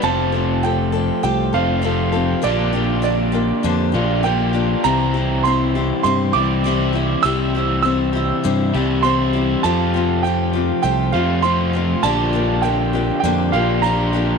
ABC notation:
X:1
M:4/4
L:1/8
Q:1/4=100
K:F
V:1 name="Grand piano"
a2 g2 g f3 | d2 d4 g2 | b2 c'2 c' d'3 | e'2 e'4 c'2 |
a2 g2 g f c'2 | a2 g2 g f b2 |]
V:2 name="Steel-string acoustic guitar"
[F,CGA] [CGA] [F,CGA] [CGA] [F,CGA] [CGA] [F,CGA] [CGA] | [B,,D,F,B,DG] [F,B,DG] [F,B,DG] [F,B,DG] [B,,D,F,B,DG] [F,B,DG] [F,B,DG] [F,B,DG] | [C,G,CEG] [CEG] [G,CEG] [CEG] [C,G,CEG] [CEG] [G,CEG] [CEG] | [C,G,CEG] [CEG] [G,CEG] [CEG] [C,G,CEG] [CEG] [G,CEG] [CEG] |
[F,A,CFG] [CFG] [A,CFG] [CFG] [F,A,CFG] [CFG] [A,CFG] [CFG] | [B,,D,F,B,DG] [F,B,DG] [F,B,DG] [F,B,DG] [B,,D,F,B,DG] [F,B,DG] [F,B,DG] [F,B,DG] |]
V:3 name="Overdriven electric guitar" clef=bass
[F,,C,F,A,CF]4- [F,,C,F,A,CF] [F,,C,F,A,CF] [F,,C,F,A,CF]2 | [B,,D,B,DF]4- [B,,D,B,DF] [B,,D,B,DF] [B,,D,B,DF]2 | [C,E,G,CE]4- [C,E,G,CE] [C,E,G,CE] [C,E,G,CE]2 | [C,E,G,CE]4- [C,E,G,CE] [C,E,G,CE] [C,E,G,CE]2 |
[F,,C,F,A,CF]4- [F,,C,F,A,CF] [F,,C,F,A,CF] [F,,C,F,A,CF]2 | [B,,D,B,DF]4- [B,,D,B,DF] [B,,D,B,DF] [B,,D,B,DF]2 |]
V:4 name="Fingered electric bass" clef=bass
F,,,4 C,, F,,,3 | B,,,4 F,, B,,,3 | C,,4 G,, C,,3 | C,,4 G,, C,,3 |
F,,4 C,, F,,3 | B,,,4 F,, B,,,3 |]